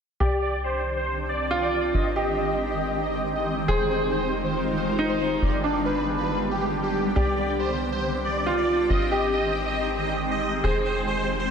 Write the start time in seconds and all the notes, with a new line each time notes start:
0.20 C2 G4 D5
0.42 D5
0.64 C5
0.97 C5
1.29 D5
1.51 F4
1.62 D5
1.94 G#1 D#5
2.16 G4 D#5
2.38 D#5
2.70 D#5
3.03 D#5
3.35 D#5
3.68 F1 G#4 C5
3.90 C5
4.12 C5
4.44 C5
4.77 C5
4.99 D#4
5.09 C5
5.42 G1 D5
5.64 D4 D5
5.85 B4
6.18 B4
6.51 G4
6.83 G4
7.16 C2 G4 D5
7.38 D5
7.59 C5
7.92 C5
8.24 D5
8.46 F4
8.57 D5
8.90 G#1 D#5
9.12 G4 D#5
9.33 D#5
9.66 D#5
9.98 D#5
10.31 D#5
10.64 F1 G#4 C5
10.85 C5
11.07 C5
11.40 C5